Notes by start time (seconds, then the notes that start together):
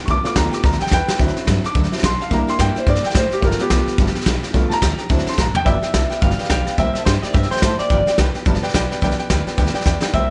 0.06 C2 G2 D3 F3 B3 F4 G4 C#6, kick, snare
0.11 D6
0.24 F3 A3 B3 F4 G4 D6, muted upright bass stroke, snare
0.35 D2 F3 B3 F4 G4 A#5, kick, snare, hi-hat pedal
0.51 F3 B3 F4 G4 D6, snare
0.63 D2 G2 D3 F3 B3 F4 G4 A#5, kick, snare
0.72 snare
0.79 F3 B3 F4 G4 G5, muted upright bass stroke, snare
0.87 F3, snare
0.91 E2 B3 F4 G4 B4 G5, kick, snare, hi-hat pedal
1.07 F3 B3 F4 G4, snare
1.18 D2 D3 F#3 C4 D4 E4 A4, kick, snare
1.28 snare
1.35 C4 D4 A4, snare
1.46 G2 F#3 C4 D4 A4, kick, snare, hi-hat pedal
1.63 C4 D4 A4 D6, muted upright bass stroke, snare
1.75 D2 D3 F#3 C4 D4 A4, kick, snare
1.84 snare
1.91 F#3 C4 D4 E4 A4, snare
1.98 F#3, snare
2.03 B1 C4 D4 A4 C6, kick, snare, hi-hat pedal
2.19 C4 D4 A4 F5, snare
2.31 C2 C3 G3 A#3 D4 E4 G4 A#5, kick, snare
2.47 A#3 E4 G4 C6, snare
2.58 G2 G3 A#3 E4 G4 G5, kick, snare, hi-hat pedal
2.75 A#3 D4 E4 G4 C5, muted upright bass stroke, snare
2.86 G2 C3 G3 A#3 E4 G4 D5, kick, snare
2.95 snare
3.03 A#3 E4 G4 G5, muted upright bass stroke, snare
3.10 snare
3.14 A2 G3 A#3 E4 G4 C5, kick, snare, hi-hat pedal
3.30 A#3 E4 G4, muted upright bass stroke, snare
3.41 G1 G2 D3 F3 A3 B3 F4 G4 A#4, kick, snare
3.51 snare
3.59 F3 B3 F4 G4, muted upright bass stroke, snare
3.69 C2 F3 B3 F4 G4, kick, snare, hi-hat pedal
3.86 F3 B3 F4 G4, snare
3.98 G1 G2 D3 F3 B3 F4 G4, kick, snare
4.07 snare
4.14 F3 B3 F4 G4, muted upright bass stroke, snare
4.21 snare
4.26 B1 F3 B3 F4 G4, kick, snare, hi-hat pedal
4.42 F3 B3 F4 G4, snare
4.54 C2 G2 D3 F3 A3 B3 F4 G4, kick, snare
4.69 F3 B3 F4 G4 A5, muted upright bass stroke, snare
4.73 A#5
4.81 D2 F3 B3 F4 G4, kick, snare, hi-hat pedal
4.98 F3 B3 F4 G4, snare
5.09 D2 D3 F#3 C4 D4 E4 A4, kick, snare
5.18 snare
5.26 C4 D4 A4 C6, muted upright bass stroke, snare
5.32 snare
5.37 A1 F#3 C4 D4 A4 A#5, kick, snare, hi-hat pedal
5.53 C4 D4 A4 G5, muted upright bass stroke, floor tom
5.65 G1 G2 D3 F3 B3 F4 G4 B4 D5 E5 G5, kick, snare
5.82 F3 B3 F4 G4 B4 D5 G5, snare
5.93 C2 F3 B3 F4 B4 D5 A5, kick, snare, hi-hat pedal
6.10 F3 B3 F4 G4 B4 D5 G5, snare
6.21 G1 G2 D3 F3 B3 F4 G4 B4 D5 F5 G5, kick, snare
6.31 snare
6.37 F3 B3 F4 G4 B4 D5 G5, muted upright bass stroke, snare
6.44 snare
6.49 B1 F3 B3 F4 G4 B4 D5 F5 G5, kick, snare, hi-hat pedal
6.65 F3 B3 F4 G4 B4 D5 G5, muted upright bass stroke, snare
6.77 C2 C3 G3 A#3 E4 G4 C5 E5 G5, kick, snare
6.93 A#3 E4 G4 C5 E5 A5, muted upright bass stroke, snare
7.05 G2 G3 A#3 E4 G4 C5 E5 G5, kick, snare, hi-hat pedal
7.22 A#3 E4 G4 C5 D5 E5 G5, muted upright bass stroke, snare
7.33 G2 C3 G3 A#3 E4 G4 C5 E5 G5, kick, snare
7.43 snare
7.50 A#3 E4 G4 C5 E5 G5, muted upright bass stroke, snare
7.56 snare
7.62 A2 G3 A#3 G4 C5 E5 A5, kick, snare, hi-hat pedal
7.78 A#3 E4 G4 C5 D5 E5 G5, muted upright bass stroke, snare
7.89 G1 G2 D3 F3 B3 F4 G4 B4 D5 G5, kick, snare
8.06 F3 B3 F4 G4 B4 D5 G5, snare
8.17 C2 F3 B3 F4 G4 B4 D5 G5, kick, snare, hi-hat pedal
8.34 F3 B3 F4 G4 B4 D5 G5, muted upright bass stroke, snare
8.45 G1 G2 D3 F3 B3 F4 G4 B4 D5 A5, kick, snare
8.55 snare
8.61 F3 B3 F4 G4 B4 D5 G5, muted upright bass stroke, snare
8.69 F3, snare
8.74 B1 B3 F4 G4 B4 D5 G5, kick, snare, hi-hat pedal
8.89 F3 B3 F4 G4 B4 D5 G5, snare
9.01 C2 G2 D3 F3 B3 F4 G4 B4 D5 G5, kick, snare
9.11 snare
9.18 F3 B3 F4 G4 B4 D5 G5, muted upright bass stroke, snare
9.29 D2 F3 B3 F4 G4 B4 D5 G5, kick, snare, hi-hat pedal
9.46 F3 B3 F4 G4 B4 D5 G5, muted upright bass stroke, snare
9.57 D2 G2 D3 F3 B3 F4 G4 B4 D5 G5, kick, snare
9.66 snare
9.74 F3 B3 F4 G4 B4 D5 G5, muted upright bass stroke, snare
9.81 snare
9.85 E2 F3 B3 F4 G4 B4 D5 G5, kick, snare, hi-hat pedal
10.02 F3 B3 F4 G4 B4 D5 G5, muted upright bass stroke, snare
10.13 C2 C3 G3 A#3 E4 G4 C5 E5 G5, kick, snare